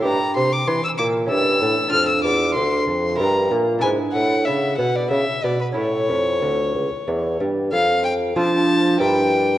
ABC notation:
X:1
M:3/4
L:1/16
Q:1/4=94
K:Dm
V:1 name="Violin"
b2 c' d' c' e' d'2 e'4 | f' e' d'2 c'4 b2 z2 | ^g2 ^f2 e2 f d e2 d =B | ^c8- c2 z2 |
f2 g2 a4 g4 |]
V:2 name="Lute"
[EG]8 [^CEA]4 | [DFA]8 [EB]4 | [DE=B]12 | [^CEA]12 |
z4 [DFA]4 [DEB]4 |]
V:3 name="Lute" clef=bass
G,,2 C,2 E,2 B,,2 G,,2 A,,2 | F,,2 E,,2 D,,2 F,,2 G,,2 B,,2 | ^G,,2 A,,2 ^C,2 =B,,2 C,2 B,,2 | A,,2 F,,2 D,,2 z2 E,,2 G,,2 |
F,,4 F,4 G,,4 |]
V:4 name="Bassoon" clef=bass
G,,2 C,2 E,2 B,,2 G,,2 A,,2 | F,,2 E,,2 D,,2 F,,2 G,,2 B,,2 | ^G,,2 A,,2 ^C,2 =B,,2 C,2 B,,2 | A,,2 F,,2 D,,2 ^C,,2 E,,2 G,,2 |
F,,4 F,4 G,,4 |]